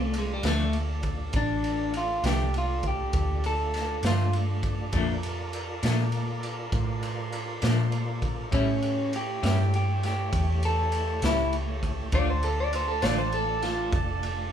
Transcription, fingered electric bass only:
0.00 0.41 C2 medium
0.43 1.31 D2 medium
1.34 2.21 A1 medium
2.24 3.11 C2 medium
3.14 4.01 D2 medium
4.03 4.91 G2 medium
4.93 5.81 F2 medium
5.83 6.71 A#2 medium
6.72 7.60 A2 medium
7.63 8.50 A#2 medium
8.52 9.40 A2 medium
9.43 10.30 G2 loud
10.33 11.20 E2 medium
11.22 12.10 C#2 loud
12.13 13.00 D2 medium
13.03 13.90 A1 loud
13.93 14.52 F1 loud

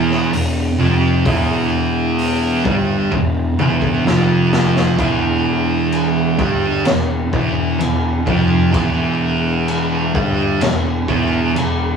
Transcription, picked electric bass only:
0.00 0.28 E1 loud
0.33 0.75 E1 medium
0.79 1.22 F1 loud
1.26 2.61 E1 loud
2.65 3.08 G1 medium
3.12 3.55 E1 medium
3.60 4.03 E1 medium
4.06 4.95 F1 medium
4.98 6.35 E1 loud
6.39 6.83 G1 loud
6.87 7.30 E1 medium
7.33 7.76 E1 loud
7.80 8.24 E1 medium
8.27 8.71 F1 medium
8.74 10.11 E1 medium
10.15 10.58 G1 loud
10.62 11.06 E1 medium
11.09 11.52 E1 medium
11.56 11.97 E1 medium

